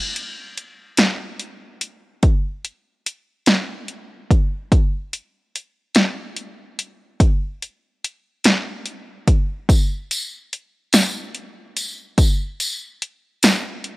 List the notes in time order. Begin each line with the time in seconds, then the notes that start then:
0.16 closed hi-hat
0.58 closed hi-hat
0.97 snare, closed hi-hat
1.40 closed hi-hat
1.81 closed hi-hat
2.23 kick, closed hi-hat
2.65 closed hi-hat
3.06 closed hi-hat
3.46 snare, closed hi-hat
3.88 closed hi-hat
4.30 kick, closed hi-hat
4.72 kick, closed hi-hat
5.13 closed hi-hat
5.56 closed hi-hat
5.95 snare, closed hi-hat
6.36 closed hi-hat
6.79 closed hi-hat
7.20 kick, closed hi-hat
7.62 closed hi-hat
8.04 closed hi-hat
8.44 snare, closed hi-hat
8.86 closed hi-hat
9.28 kick, closed hi-hat
9.69 kick, closed hi-hat, tambourine
10.11 closed hi-hat, tambourine
10.53 closed hi-hat
10.93 snare, closed hi-hat, tambourine
11.35 closed hi-hat
11.77 closed hi-hat, tambourine
12.18 kick, closed hi-hat, tambourine
12.60 closed hi-hat, tambourine
13.02 closed hi-hat
13.43 snare, closed hi-hat, tambourine
13.84 closed hi-hat